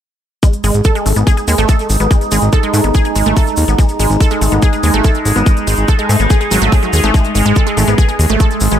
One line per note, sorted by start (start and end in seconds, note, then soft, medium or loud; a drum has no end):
0.43 8.79 G#3 medium
0.43 0.47 G#3 medium
0.43 7.16 D#4 medium
0.43 kick loud
0.43 closed hi-hat medium
0.43 cabasa soft
0.53 closed hi-hat medium
0.53 cabasa soft
0.64 0.71 G#1 medium
0.64 0.71 G#3 loud
0.64 open hi-hat loud
0.64 cabasa loud
0.74 0.82 G#1 medium
0.74 closed hi-hat medium
0.74 cabasa soft
0.84 0.89 A4 loud
0.84 kick loud
0.84 closed hi-hat medium
0.84 cabasa soft
0.95 1.00 G#3 loud
0.95 closed hi-hat medium
0.95 cabasa soft
1.06 1.13 G#1 medium
1.06 1.09 A3 medium
1.06 open hi-hat loud
1.06 cabasa medium
1.16 1.24 G#1 medium
1.16 1.19 B3 medium
1.16 closed hi-hat medium
1.16 cabasa soft
1.27 1.31 G#4 loud
1.27 kick loud
1.27 closed hi-hat medium
1.27 cabasa medium
1.37 1.40 G#4 medium
1.37 closed hi-hat medium
1.37 cabasa soft
1.48 1.55 D#2 medium
1.48 1.55 G#3 loud
1.48 open hi-hat loud
1.48 cabasa medium
1.58 1.66 G#1 medium
1.58 1.63 A3 loud
1.58 closed hi-hat medium
1.58 cabasa soft
1.69 1.73 A4 loud
1.69 kick loud
1.69 closed hi-hat medium
1.69 cabasa medium
1.79 closed hi-hat medium
1.79 cabasa soft
1.90 1.97 G#1 medium
1.90 open hi-hat loud
1.90 cabasa medium
2.00 2.07 G#1 medium
2.00 2.03 B3 medium
2.00 closed hi-hat medium
2.00 cabasa soft
2.11 2.15 G#3 medium
2.11 kick loud
2.11 closed hi-hat medium
2.11 cabasa medium
2.21 closed hi-hat medium
2.21 cabasa soft
2.31 2.39 G#1 medium
2.31 2.39 G#3 loud
2.31 open hi-hat loud
2.31 cabasa loud
2.42 2.49 G#1 medium
2.42 closed hi-hat medium
2.42 cabasa soft
2.52 2.57 A4 loud
2.52 kick loud
2.52 closed hi-hat medium
2.52 cabasa medium
2.63 2.68 G#3 loud
2.63 closed hi-hat medium
2.63 cabasa soft
2.74 2.81 G#2 medium
2.74 2.76 A3 medium
2.74 open hi-hat loud
2.74 cabasa loud
2.84 2.91 G#1 medium
2.84 2.87 B3 medium
2.84 closed hi-hat medium
2.84 cabasa soft
2.94 2.99 G#4 loud
2.94 kick loud
2.94 closed hi-hat medium
2.94 cabasa medium
3.05 3.08 G#4 medium
3.05 closed hi-hat medium
3.05 cabasa soft
3.16 3.23 G#1 loud
3.16 3.23 G#3 loud
3.16 open hi-hat loud
3.16 cabasa medium
3.26 3.33 G#1 medium
3.26 3.31 A3 loud
3.26 closed hi-hat soft
3.26 cabasa soft
3.37 3.41 A4 loud
3.37 kick loud
3.37 open hi-hat medium
3.37 cabasa medium
3.47 closed hi-hat medium
3.47 cabasa soft
3.57 3.65 D#2 medium
3.57 open hi-hat loud
3.57 cabasa loud
3.68 3.75 G#1 medium
3.68 3.71 B3 medium
3.68 closed hi-hat medium
3.68 cabasa soft
3.79 3.83 G#3 medium
3.79 kick loud
3.79 closed hi-hat medium
3.79 cabasa soft
3.89 closed hi-hat medium
3.89 cabasa soft
4.00 4.07 G#1 loud
4.00 4.06 G#3 loud
4.00 open hi-hat loud
4.00 cabasa loud
4.10 4.17 G#1 medium
4.10 closed hi-hat soft
4.10 cabasa soft
4.20 4.25 A4 loud
4.20 kick loud
4.20 closed hi-hat medium
4.20 cabasa medium
4.30 4.36 G#3 loud
4.30 closed hi-hat medium
4.30 cabasa soft
4.41 4.49 G#1 medium
4.41 4.44 A3 medium
4.41 open hi-hat loud
4.41 cabasa medium
4.51 4.59 G#1 medium
4.51 4.55 B3 medium
4.51 closed hi-hat medium
4.51 cabasa soft
4.62 4.67 G#4 loud
4.62 kick loud
4.62 closed hi-hat medium
4.62 cabasa medium
4.73 4.76 G#4 medium
4.73 closed hi-hat soft
4.73 cabasa soft
4.83 4.91 D#2 loud
4.83 4.90 G#3 loud
4.83 open hi-hat loud
4.83 cabasa medium
4.94 5.01 G#1 medium
4.94 4.99 A3 loud
4.94 cabasa soft
5.04 5.09 A4 loud
5.04 kick loud
5.04 closed hi-hat medium
5.04 cabasa medium
5.14 closed hi-hat medium
5.14 cabasa soft
5.25 5.33 G#1 medium
5.25 open hi-hat loud
5.25 cabasa loud
5.36 5.43 G#1 medium
5.36 5.39 B3 medium
5.36 closed hi-hat medium
5.36 cabasa soft
5.46 5.51 G#3 medium
5.46 kick loud
5.46 closed hi-hat medium
5.46 cabasa medium
5.57 closed hi-hat medium
5.57 cabasa soft
5.67 5.75 G#1 medium
5.67 5.74 G#3 loud
5.67 open hi-hat loud
5.67 cabasa loud
5.77 5.85 G#1 medium
5.77 closed hi-hat medium
5.77 cabasa soft
5.88 5.93 A4 loud
5.88 kick loud
5.88 closed hi-hat medium
5.88 cabasa medium
5.99 6.03 G#3 loud
5.99 closed hi-hat medium
5.99 cabasa soft
6.09 6.17 G#2 medium
6.09 6.12 A3 medium
6.09 open hi-hat loud
6.09 cabasa loud
6.20 6.27 G#1 medium
6.20 6.23 B3 medium
6.20 closed hi-hat soft
6.20 cabasa soft
6.30 6.35 G#4 loud
6.30 kick loud
6.30 closed hi-hat medium
6.30 cabasa medium
6.41 6.44 G#4 medium
6.41 closed hi-hat soft
6.41 cabasa soft
6.51 6.59 G#1 loud
6.51 6.54 F#3 loud
6.51 open hi-hat loud
6.51 cabasa loud
6.62 6.69 G#1 medium
6.62 6.69 A3 loud
6.62 closed hi-hat soft
6.62 cabasa soft
6.72 6.79 G#4 medium
6.72 kick loud
6.72 open hi-hat medium
6.72 cabasa medium
6.83 6.86 F#3 medium
6.83 closed hi-hat medium
6.83 cabasa soft
6.93 7.00 D#2 medium
6.93 6.98 G#4 loud
6.93 open hi-hat loud
6.93 cabasa medium
7.04 7.11 G#1 medium
7.04 7.08 A3 loud
7.04 closed hi-hat medium
7.04 cabasa soft
7.14 7.19 G#3 medium
7.14 8.79 G#4 medium
7.14 kick loud
7.14 closed hi-hat medium
7.14 cabasa soft
7.24 closed hi-hat soft
7.24 cabasa soft
7.35 7.42 G#1 medium
7.35 7.42 G#3 loud
7.35 open hi-hat loud
7.35 cabasa loud
7.45 7.53 G#1 medium
7.45 7.53 G#3 loud
7.45 closed hi-hat soft
7.45 cabasa soft
7.56 7.61 A4 loud
7.56 kick loud
7.56 closed hi-hat medium
7.56 cabasa soft
7.67 7.71 G#3 loud
7.67 closed hi-hat medium
7.67 cabasa soft
7.77 7.84 G#1 medium
7.77 7.80 A3 medium
7.77 open hi-hat loud
7.77 cabasa medium
7.88 7.95 G#1 medium
7.88 7.90 B3 medium
7.88 closed hi-hat soft
7.88 cabasa soft
7.98 8.03 G#4 medium
7.98 kick loud
7.98 closed hi-hat medium
7.98 cabasa medium
8.09 8.11 G#4 medium
8.09 closed hi-hat soft
8.09 cabasa soft
8.19 8.26 D#2 loud
8.19 open hi-hat loud
8.19 cabasa medium
8.29 8.37 G#1 medium
8.29 8.34 A3 loud
8.29 closed hi-hat medium
8.29 cabasa soft
8.40 8.45 A4 loud
8.40 kick loud
8.40 closed hi-hat medium
8.40 cabasa medium
8.51 closed hi-hat soft
8.51 cabasa soft
8.61 8.68 G#1 medium
8.61 open hi-hat loud
8.61 cabasa medium
8.71 8.79 G#1 medium
8.71 8.74 B3 medium
8.71 closed hi-hat medium
8.71 cabasa soft